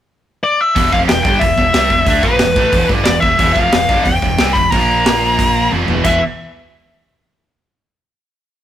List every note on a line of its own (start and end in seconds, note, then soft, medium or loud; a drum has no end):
0.44 0.61 D5 medium
0.61 0.94 E5 loud
0.76 0.91 E1 loud
0.76 0.91 E2 medium
0.76 0.92 B2 medium
0.76 0.92 E3 loud
0.76 kick loud
0.76 open hi-hat medium
0.92 1.08 F1 medium
0.92 1.08 F2 medium
0.92 1.08 C3 medium
0.92 1.09 F3 loud
0.92 0.97 F5 medium
0.92 kick loud
1.08 1.25 E1 medium
1.08 1.22 E2 medium
1.08 1.22 B2 medium
1.08 1.22 G5 loud
1.08 snare loud
1.08 open hi-hat medium
1.23 1.40 G1 medium
1.23 1.41 G2 medium
1.23 1.41 D3 medium
1.23 1.41 G3 loud
1.23 1.39 G5 medium
1.23 kick loud
1.39 1.57 E1 medium
1.39 1.55 E2 medium
1.39 1.55 B2 medium
1.39 2.06 E5 loud
1.39 kick loud
1.39 open hi-hat medium
1.58 1.73 E1 medium
1.58 1.71 E2 medium
1.58 1.71 B2 medium
1.58 kick medium
1.74 1.90 C2 medium
1.74 1.90 C3 medium
1.74 1.91 G3 loud
1.74 1.91 C4 loud
1.74 snare loud
1.74 open hi-hat medium
1.90 2.06 E1 medium
1.90 2.04 E2 medium
1.90 2.05 B2 medium
1.90 kick medium
2.06 2.22 D2 medium
2.06 2.22 D3 medium
2.06 2.22 A3 medium
2.06 2.23 D4 medium
2.06 2.24 E5 medium
2.06 kick loud
2.06 open hi-hat medium
2.22 2.39 A#1 medium
2.22 2.39 A#2 loud
2.22 2.39 F3 loud
2.22 2.39 A#3 loud
2.22 2.86 B4 medium
2.22 kick loud
2.39 2.56 E1 medium
2.39 2.53 E2 medium
2.39 2.53 B2 medium
2.39 snare loud
2.39 open hi-hat medium
2.55 2.72 A1 loud
2.55 2.71 A2 loud
2.55 2.71 E3 medium
2.55 2.72 A3 loud
2.55 kick loud
2.71 2.89 E1 loud
2.71 2.87 E2 medium
2.71 2.88 B2 loud
2.71 2.88 E3 loud
2.71 kick loud
2.71 open hi-hat medium
2.88 3.05 G1 loud
2.88 3.04 G2 medium
2.88 3.05 D3 loud
2.88 3.05 G3 loud
2.88 kick loud
3.04 3.22 E1 medium
3.04 3.19 E2 medium
3.04 3.19 B2 medium
3.04 3.20 D5 medium
3.04 snare loud
3.04 open hi-hat medium
3.20 3.38 E1 medium
3.20 3.35 E2 medium
3.20 3.36 B2 medium
3.20 3.56 E5 loud
3.20 kick loud
3.39 3.55 E1 loud
3.39 3.55 E2 medium
3.39 3.55 B2 medium
3.39 3.56 E3 medium
3.39 kick loud
3.39 open hi-hat medium
3.53 3.71 F1 medium
3.53 3.72 F2 loud
3.53 3.72 C3 medium
3.53 3.72 F3 loud
3.53 4.04 F5 loud
3.53 kick loud
3.72 3.88 E1 medium
3.72 3.86 E2 medium
3.72 3.86 B2 medium
3.72 snare loud
3.72 open hi-hat medium
3.89 4.05 G1 loud
3.89 4.04 G2 medium
3.89 4.05 D3 loud
3.89 4.05 G3 loud
3.89 kick loud
4.04 4.21 E1 medium
4.04 4.18 E2 medium
4.04 4.19 B2 medium
4.04 4.56 G5 loud
4.04 kick loud
4.04 open hi-hat medium
4.22 4.38 E1 medium
4.22 4.36 E2 medium
4.22 4.36 B2 medium
4.22 kick medium
4.38 4.54 C2 medium
4.38 4.55 C3 medium
4.38 4.55 G3 loud
4.38 4.55 C4 loud
4.38 snare loud
4.38 open hi-hat medium
4.53 4.71 E1 medium
4.53 4.69 E2 medium
4.53 4.70 B5 loud
4.53 kick medium
4.57 4.69 B2 medium
4.70 5.67 A#1 loud
4.70 5.71 A#2 medium
4.70 5.71 F3 medium
4.70 5.71 A#3 medium
4.70 5.70 A#5 loud
4.70 kick loud
4.70 open hi-hat medium
5.06 snare loud
5.06 open hi-hat medium
5.39 kick loud
5.39 open hi-hat medium
5.72 5.87 F1 medium
5.72 5.88 F2 loud
5.72 5.88 C3 medium
5.72 5.88 F3 loud
5.72 high tom medium
5.88 6.04 E1 medium
5.88 6.04 E2 medium
5.88 6.05 B2 loud
5.88 6.05 E3 loud
5.88 floor tom medium
6.04 6.20 E1 medium
6.04 6.18 E2 medium
6.04 6.19 B2 loud
6.04 6.19 E3 medium
6.04 6.20 E5 medium
6.04 kick loud
6.04 crash medium